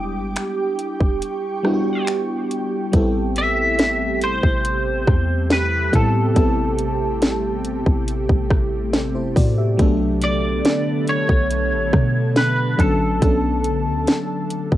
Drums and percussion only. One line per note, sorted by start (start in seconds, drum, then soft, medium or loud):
0.36 finger snap loud
0.36 closed hi-hat medium
0.79 closed hi-hat medium
1.00 kick medium
1.22 closed hi-hat medium
1.65 cross-stick medium
2.07 finger snap loud
2.07 closed hi-hat medium
2.51 closed hi-hat medium
2.93 kick medium
2.93 closed hi-hat medium
3.36 closed hi-hat medium
3.79 snare loud
3.79 closed hi-hat medium
4.22 closed hi-hat medium
4.43 kick medium
4.65 closed hi-hat medium
5.07 kick loud
5.07 cross-stick loud
5.50 snare loud
5.50 closed hi-hat medium
5.93 kick medium
5.93 closed hi-hat medium
6.36 kick loud
6.36 closed hi-hat medium
6.79 closed hi-hat medium
7.22 snare loud
7.22 closed hi-hat medium
7.65 closed hi-hat medium
7.86 kick medium
8.08 closed hi-hat medium
8.29 kick medium
8.50 kick loud
8.50 cross-stick loud
8.93 snare loud
8.93 closed hi-hat medium
9.36 kick medium
9.36 open hi-hat medium
9.79 kick loud
9.79 closed hi-hat medium
10.22 closed hi-hat medium
10.65 snare loud
10.65 closed hi-hat medium
11.08 closed hi-hat medium
11.29 kick medium
11.51 closed hi-hat medium
11.93 kick loud
11.93 cross-stick loud
12.36 snare loud
12.36 closed hi-hat medium
12.79 kick medium
12.79 closed hi-hat medium
13.22 kick medium
13.22 closed hi-hat medium
13.64 closed hi-hat medium
14.07 snare loud
14.07 closed hi-hat medium
14.50 closed hi-hat medium
14.72 kick medium